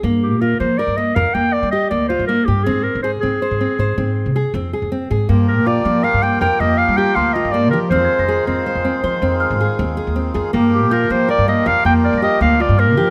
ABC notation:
X:1
M:7/4
L:1/16
Q:1/4=160
K:Gphr
V:1 name="Celesta"
z24 z4 | z24 z4 | z4 d'8 z8 c'8 | f' a' b'8 z6 f'8 z4 |
z4 g'8 z4 f' b'6- b' f' b'3 |]
V:2 name="Clarinet"
z2 G2 B2 c2 d2 e2 f2 g2 d2 e2 d2 c2 B2 G2 | A2 B2 c2 A16 z6 | z2 B2 d4 f2 g2 g2 e2 f2 g2 f2 e2 d2 B2 | c6 c16 z6 |
z2 G2 B2 c2 d2 e2 f2 g2 d2 e2 f2 d2 B4 |]
V:3 name="Nylon-string guitar"
B,4 F2 B,2 B2 B,2 B2 B,4 G2 B,2 F2 B,2 G2 | C4 A2 C2 c2 C2 c2 C4 A2 C2 A2 C2 A2 | B,4 F2 B,2 B2 B,2 B2 B,4 G2 B,2 F2 B,2 G2 | C4 A2 C2 c2 C2 c2 C4 A2 C2 A2 C2 A2 |
B,4 F2 B,2 B2 B,2 B2 B,4 G2 B,2 F2 B,2 G2 |]
V:4 name="Harmonium"
z24 z4 | z24 z4 | [F,B,G]24- [F,B,G]4 | [E,A,F]24- [E,A,F]4 |
[F,B,G]24- [F,B,G]4 |]
V:5 name="Upright bass" clef=bass
G,,3 B,,3 F,2 z G,,3 F,, z F,,3 G,3 D,,3 G,,2 z G,,2 | A,,2 z A,,3 A,,2 z A,,2 z A,,2 A,,3 C,2 z F,,3 F,,3 A,,2 | G,,3 B,,3 F,2 z G,,3 F,, z F,,3 G,3 D,,3 G,,3 F,2 | F,,2 z F,,3 F,,2 z F,,2 z F,2 F,,3 A,,2 z E,,3 E,,3 F,,2 |
G,,3 B,,3 F,2 z G,,3 F,, z F,,3 G,3 D,,3 G,,3 F,2 |]